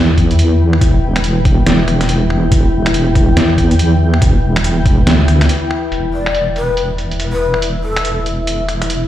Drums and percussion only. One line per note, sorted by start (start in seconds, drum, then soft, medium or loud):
0.18 kick medium
0.18 closed hi-hat soft
0.31 closed hi-hat soft
0.39 closed hi-hat medium
0.73 finger snap medium
0.81 kick loud
0.81 closed hi-hat medium
1.16 finger snap medium
1.16 closed hi-hat soft
1.24 closed hi-hat medium
1.45 kick loud
1.45 closed hi-hat soft
1.66 snare loud
1.66 closed hi-hat medium
1.88 finger snap soft
1.88 closed hi-hat soft
2.01 finger snap medium
2.01 snare soft
2.01 closed hi-hat soft
2.09 closed hi-hat medium
2.30 finger snap medium
2.52 kick loud
2.52 closed hi-hat medium
2.86 finger snap medium
2.86 closed hi-hat medium
2.94 closed hi-hat medium
3.15 kick loud
3.15 closed hi-hat soft
3.37 snare loud
3.37 closed hi-hat medium
3.58 kick medium
3.58 closed hi-hat medium
3.71 closed hi-hat medium
3.79 closed hi-hat medium
4.14 finger snap medium
4.22 kick loud
4.22 closed hi-hat medium
4.56 finger snap medium
4.56 closed hi-hat medium
4.64 closed hi-hat medium
4.86 kick loud
4.86 closed hi-hat medium
5.07 snare loud
5.07 closed hi-hat medium
5.28 finger snap medium
5.28 closed hi-hat medium
5.41 finger snap medium
5.41 snare soft
5.41 closed hi-hat medium
5.49 closed hi-hat medium
5.71 finger snap medium
5.92 closed hi-hat medium
6.26 finger snap medium
6.26 closed hi-hat soft
6.35 closed hi-hat medium
6.56 closed hi-hat soft
6.77 closed hi-hat medium
6.98 closed hi-hat soft
7.11 closed hi-hat soft
7.20 closed hi-hat medium
7.54 finger snap medium
7.62 closed hi-hat medium
7.96 finger snap medium
7.96 closed hi-hat soft
8.05 closed hi-hat medium
8.26 closed hi-hat soft
8.47 closed hi-hat medium
8.69 finger snap soft
8.69 closed hi-hat soft
8.82 finger snap medium
8.82 closed hi-hat medium
8.90 closed hi-hat medium